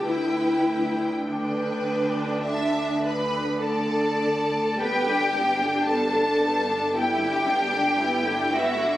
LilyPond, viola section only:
\new Staff \with { instrumentName = "Viola section" } { \time 4/4 \key g \major \tempo 4 = 54 e'4 d'2~ d'8 r8 | <g b>16 <d d'>16 <g b>16 <d d'>16 <g b>16 <d d'>16 <g b>16 <d d'>16 <g b>16 <d d'>16 <g b>16 <d d'>16 <g b>16 <d d'>16 <g b>16 <d d'>16 | }